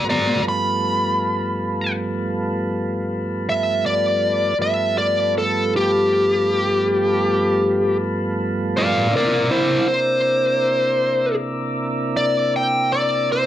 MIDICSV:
0, 0, Header, 1, 3, 480
1, 0, Start_track
1, 0, Tempo, 757576
1, 20, Time_signature, 12, 3, 24, 8
1, 8531, End_track
2, 0, Start_track
2, 0, Title_t, "Lead electric guitar"
2, 0, Program_c, 0, 29
2, 61, Note_on_c, 0, 74, 69
2, 67, Note_on_c, 0, 82, 75
2, 265, Note_off_c, 0, 74, 0
2, 277, Note_off_c, 0, 82, 0
2, 307, Note_on_c, 0, 83, 69
2, 1217, Note_off_c, 0, 83, 0
2, 2213, Note_on_c, 0, 76, 81
2, 2429, Note_off_c, 0, 76, 0
2, 2446, Note_on_c, 0, 74, 75
2, 2897, Note_off_c, 0, 74, 0
2, 2926, Note_on_c, 0, 76, 80
2, 3144, Note_off_c, 0, 76, 0
2, 3157, Note_on_c, 0, 74, 70
2, 3380, Note_off_c, 0, 74, 0
2, 3409, Note_on_c, 0, 69, 61
2, 3626, Note_off_c, 0, 69, 0
2, 3652, Note_on_c, 0, 67, 79
2, 5049, Note_off_c, 0, 67, 0
2, 5555, Note_on_c, 0, 74, 57
2, 5563, Note_on_c, 0, 77, 72
2, 5783, Note_off_c, 0, 77, 0
2, 5786, Note_off_c, 0, 74, 0
2, 5801, Note_on_c, 0, 70, 70
2, 5809, Note_on_c, 0, 74, 72
2, 6013, Note_off_c, 0, 70, 0
2, 6024, Note_on_c, 0, 64, 59
2, 6026, Note_off_c, 0, 74, 0
2, 6027, Note_on_c, 0, 72, 64
2, 6244, Note_off_c, 0, 64, 0
2, 6253, Note_off_c, 0, 72, 0
2, 6261, Note_on_c, 0, 72, 89
2, 7194, Note_off_c, 0, 72, 0
2, 7709, Note_on_c, 0, 74, 83
2, 7936, Note_off_c, 0, 74, 0
2, 7959, Note_on_c, 0, 79, 73
2, 8181, Note_off_c, 0, 79, 0
2, 8189, Note_on_c, 0, 74, 89
2, 8416, Note_off_c, 0, 74, 0
2, 8440, Note_on_c, 0, 72, 75
2, 8531, Note_off_c, 0, 72, 0
2, 8531, End_track
3, 0, Start_track
3, 0, Title_t, "Tonewheel organ"
3, 0, Program_c, 1, 16
3, 22, Note_on_c, 1, 44, 57
3, 28, Note_on_c, 1, 58, 60
3, 28, Note_on_c, 1, 60, 63
3, 32, Note_on_c, 1, 54, 64
3, 261, Note_off_c, 1, 44, 0
3, 264, Note_off_c, 1, 58, 0
3, 264, Note_off_c, 1, 60, 0
3, 266, Note_off_c, 1, 54, 0
3, 269, Note_on_c, 1, 43, 56
3, 270, Note_on_c, 1, 59, 58
3, 272, Note_on_c, 1, 57, 55
3, 275, Note_on_c, 1, 53, 57
3, 2876, Note_off_c, 1, 43, 0
3, 2877, Note_off_c, 1, 59, 0
3, 2878, Note_off_c, 1, 57, 0
3, 2879, Note_off_c, 1, 53, 0
3, 2905, Note_on_c, 1, 43, 65
3, 2905, Note_on_c, 1, 59, 67
3, 2907, Note_on_c, 1, 53, 65
3, 2908, Note_on_c, 1, 57, 68
3, 5755, Note_off_c, 1, 43, 0
3, 5755, Note_off_c, 1, 59, 0
3, 5756, Note_off_c, 1, 53, 0
3, 5757, Note_off_c, 1, 57, 0
3, 5768, Note_on_c, 1, 48, 63
3, 5768, Note_on_c, 1, 64, 70
3, 5769, Note_on_c, 1, 62, 65
3, 5771, Note_on_c, 1, 58, 64
3, 8531, Note_off_c, 1, 48, 0
3, 8531, Note_off_c, 1, 58, 0
3, 8531, Note_off_c, 1, 62, 0
3, 8531, Note_off_c, 1, 64, 0
3, 8531, End_track
0, 0, End_of_file